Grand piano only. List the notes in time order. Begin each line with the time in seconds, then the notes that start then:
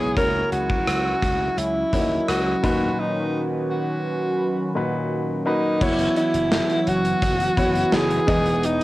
Already playing: B3 E4 G#4 C#5
0.16 C#3 A#3 E4 F#4 C#5
1.93 A#3 E4 F#4 C#5
2.01 D#5
2.63 A#2 D#3 D#4 F#4 B4
4.75 A#2 D#4 F#4 B4
5.46 A#3 D#4 F#4 B4
5.81 B3 E4 F#4 C#5
7.57 B3 E4 F#4 C#5
8.27 E3 B3 D#4 G#4 D#5